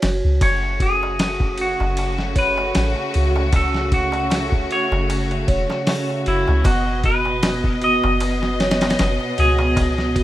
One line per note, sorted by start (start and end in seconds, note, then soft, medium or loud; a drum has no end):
0.00 0.22 F#1 medium
0.00 0.02 F#4 medium
0.00 0.40 F#4 medium
0.00 0.44 C#5 loud
0.00 snare loud
0.00 ride medium
0.25 0.40 C#2 loud
0.41 1.76 F#1 loud
0.41 6.61 C#3 medium
0.41 6.61 A3 medium
0.41 6.61 F#4 medium
0.41 0.82 C#5 medium
0.41 kick loud
0.41 ride medium
0.41 darbuka tek medium
0.63 darbuka tek soft
0.80 1.04 F#4 medium
0.80 1.55 G#4 medium
0.80 kick medium
0.80 ride medium
1.03 darbuka tek medium
1.19 snare loud
1.19 ride medium
1.19 darbuka tek medium
1.40 kick medium
1.40 darbuka tek soft
1.58 1.82 F#4 medium
1.58 2.40 F#4 medium
1.58 ride medium
1.80 2.73 F#1 medium
1.80 darbuka tek medium
1.97 ride medium
1.97 darbuka tek medium
2.18 snare soft
2.18 darbuka tek soft
2.36 3.50 B4 medium
2.36 3.11 C#5 medium
2.36 kick medium
2.36 ride medium
2.58 darbuka tek medium
2.75 2.95 A1 medium
2.75 snare loud
2.75 ride medium
2.75 darbuka tek medium
2.96 darbuka tek soft
3.14 4.67 C#2 medium
3.14 3.51 F#4 medium
3.14 ride medium
3.36 darbuka tek medium
3.53 3.91 A4 medium
3.53 kick loud
3.53 ride medium
3.53 darbuka tek medium
3.75 snare soft
3.75 darbuka tek soft
3.92 4.16 F#4 medium
3.92 4.74 F#4 medium
3.92 kick medium
3.92 ride medium
4.12 ride soft
4.12 darbuka tek medium
4.30 snare loud
4.30 ride medium
4.30 darbuka tek medium
4.52 kick medium
4.52 darbuka tek soft
4.70 4.94 F#4 medium
4.70 6.23 C#5 loud
4.70 ride medium
4.92 5.45 F#1 medium
4.92 darbuka tek medium
5.09 ride medium
5.09 darbuka tek medium
5.31 ride soft
5.31 darbuka tek soft
5.48 5.67 E1 medium
5.48 6.22 C#5 loud
5.48 kick medium
5.48 ride medium
5.70 snare soft
5.70 darbuka tek medium
5.87 snare loud
5.87 open hi-hat medium
5.87 darbuka tek medium
6.10 darbuka tek soft
6.26 6.45 F#1 medium
6.26 6.63 E4 medium
6.26 6.63 F#4 medium
6.26 ride medium
6.48 6.64 C#2 loud
6.48 darbuka tek medium
6.64 7.99 F#1 loud
6.64 10.23 B2 medium
6.64 10.23 B3 medium
6.64 7.02 F#4 medium
6.64 10.23 D#5 medium
6.64 kick loud
6.64 ride medium
6.64 darbuka tek medium
6.86 darbuka tek soft
7.04 7.28 F#4 medium
7.04 7.84 B4 medium
7.04 kick medium
7.04 ride medium
7.25 darbuka tek medium
7.43 snare loud
7.43 ride medium
7.43 darbuka tek medium
7.64 kick medium
7.64 darbuka tek soft
7.82 8.06 F#4 medium
7.82 9.39 D#5 loud
7.82 ride medium
8.04 8.96 F#1 loud
8.04 darbuka tek medium
8.20 ride medium
8.20 darbuka tek medium
8.42 snare soft
8.42 darbuka tek soft
8.60 9.34 C#5 loud
8.60 snare medium
8.60 ride medium
8.71 snare medium
8.71 ride medium
8.81 snare medium
8.81 ride medium
8.81 darbuka tek medium
8.90 snare medium
8.90 ride medium
8.99 9.18 F#1 medium
8.99 snare loud
8.99 ride medium
8.99 darbuka tek medium
9.20 darbuka tek soft
9.38 10.23 C#2 medium
9.38 9.75 F#4 medium
9.38 10.23 G#4 medium
9.38 ride medium
9.59 darbuka tek medium
9.76 kick loud
9.76 ride medium
9.76 darbuka tek medium
9.98 snare soft
9.98 darbuka tek soft
10.15 10.23 F#4 medium
10.15 kick medium
10.15 ride medium